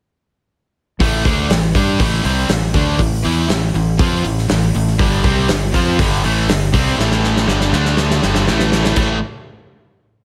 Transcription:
1.00 fingered electric bass A1, overdriven electric guitar A2 E3 A3, kick, open hi-hat
1.25 fingered electric bass D2, overdriven electric guitar D3 A3 D4, kick, open hi-hat
1.50 fingered electric bass A1, overdriven electric guitar A2 E3, snare, open hi-hat
1.74 fingered electric bass G2, overdriven electric guitar G3 D4 G4, kick, open hi-hat
1.99 fingered electric bass A1, overdriven electric guitar A2 E3 A3, kick, open hi-hat
2.25 fingered electric bass C2, overdriven electric guitar C3 G3 C4, open hi-hat
2.49 fingered electric bass A1, overdriven electric guitar A2 E3, snare, open hi-hat
2.74 fingered electric bass D2, overdriven electric guitar D3 A3 D4, kick, open hi-hat
2.99 fingered electric bass A1, overdriven electric guitar A2 E3, kick, open hi-hat
3.24 fingered electric bass E2, overdriven electric guitar E3 B3 E4, open hi-hat
3.49 fingered electric bass A1, overdriven electric guitar A2 E3, snare, open hi-hat
3.74 fingered electric bass A1, overdriven electric guitar A2 E3, open hi-hat
3.99 fingered electric bass F2, overdriven electric guitar F3 C4 F4, kick, open hi-hat
4.24 fingered electric bass A1, overdriven electric guitar A2 E3, open hi-hat
4.38 snare
4.49 fingered electric bass A1, overdriven electric guitar A2 E3, snare, open hi-hat
4.74 fingered electric bass A1, overdriven electric guitar A2 E3, open hi-hat
4.88 snare
4.99 fingered electric bass G1, overdriven electric guitar G2 D3 G3, kick, open hi-hat
5.24 fingered electric bass C2, overdriven electric guitar C3 G3 C4, kick, open hi-hat
5.48 fingered electric bass G1, overdriven electric guitar G2 D3, snare, open hi-hat
5.74 fingered electric bass F2, overdriven electric guitar F3 C4 F4, kick, open hi-hat
5.99 fingered electric bass G1, overdriven electric guitar G2 D3 G3, kick, open hi-hat
6.24 fingered electric bass A1, overdriven electric guitar A2 E3 A3, open hi-hat
6.48 fingered electric bass G1, overdriven electric guitar G2 D3, snare, open hi-hat
6.74 fingered electric bass C2, overdriven electric guitar C3 G3 C4, kick, open hi-hat
6.87 snare
6.98 fingered electric bass A1, overdriven electric guitar A2 E3 A3, snare
7.11 snare
7.24 snare
7.36 snare
7.48 fingered electric bass G1, overdriven electric guitar G2 D3 G3, snare
7.61 snare
7.72 fingered electric bass D2, overdriven electric guitar D3 A3 D4, snare
7.85 snare
7.97 snare
8.10 snare
8.22 fingered electric bass G1, overdriven electric guitar G2 D3 G3, snare
8.35 snare
8.47 fingered electric bass A1, overdriven electric guitar A2 E3 A3, snare
8.59 snare
8.72 snare
8.84 snare
8.96 fingered electric bass A1, overdriven electric guitar A2 E3 A3, kick, crash

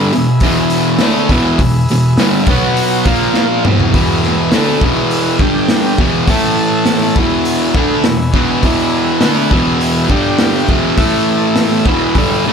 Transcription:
Already playing: distorted electric guitar G2 D3 G3, transistor combo organ G#4 B4 E5
0.13 distorted electric guitar E2 B2, open hi-hat
0.40 distorted electric guitar E2 B2, kick, open hi-hat
0.44 distorted electric guitar E3
0.70 open hi-hat
0.99 distorted electric guitar D3 A3, snare, open hi-hat
1.03 distorted electric guitar D4
1.29 distorted electric guitar E2 B2 E3, kick, open hi-hat
1.59 distorted electric guitar E2 B2, kick, open hi-hat
1.88 distorted electric guitar E2 B2, open hi-hat
2.18 distorted electric guitar G2 D3 G3, snare, open hi-hat
2.46 distorted electric guitar B2 F#3, transistor combo organ F#4 B4 F#5, kick, open hi-hat
2.50 distorted electric guitar B3
2.77 open hi-hat
3.04 distorted electric guitar A#2 F3 A#3, transistor combo organ F4 A#4 F5, kick, open hi-hat
3.34 snare
3.65 distorted electric guitar E2 B2 E3, mid tom
3.80 floor tom
3.93 distorted electric guitar E2 B2 E3, transistor combo organ G#4 B4 E5, kick, open hi-hat
4.23 snare
4.52 distorted electric guitar D3 A3 D4, snare, open hi-hat
4.81 distorted electric guitar E2 B2 E3, kick
5.10 open hi-hat
5.39 distorted electric guitar G2 D3 G3, transistor combo organ G4 D5 G5, kick
5.68 snare, open hi-hat
5.98 distorted electric guitar E2 B2 E3, kick
6.28 distorted electric guitar A2 E3 A3, transistor combo organ A4 E5 A5, kick, open hi-hat
6.86 snare, open hi-hat
7.16 distorted electric guitar E2 B2 E3, transistor combo organ B4 E5 G#5, kick
7.45 open hi-hat
7.75 distorted electric guitar D3 A3 D4, kick
8.04 distorted electric guitar E2 B2, snare, open hi-hat
8.34 distorted electric guitar E2 B2 E3, kick
8.63 distorted electric guitar E2 B2 E3, kick, open hi-hat
9.21 distorted electric guitar D3 A3 D4, snare, open hi-hat
9.51 distorted electric guitar E2 B2 E3, kick
9.81 open hi-hat
10.09 distorted electric guitar G2 D3 G3, transistor combo organ G4 D5 G5, kick
10.39 snare, open hi-hat
10.69 distorted electric guitar E2 B2 E3, kick
10.97 distorted electric guitar A2 E3 A3, transistor combo organ E4 A4 E5, kick, open hi-hat
11.56 snare, open hi-hat
11.70 snare
11.86 distorted electric guitar E2 B2 E3, transistor combo organ G#4 B4 E5, kick
12.15 distorted electric guitar G2 D3 G3, kick, open hi-hat
12.46 distorted electric guitar A2 E3 A3

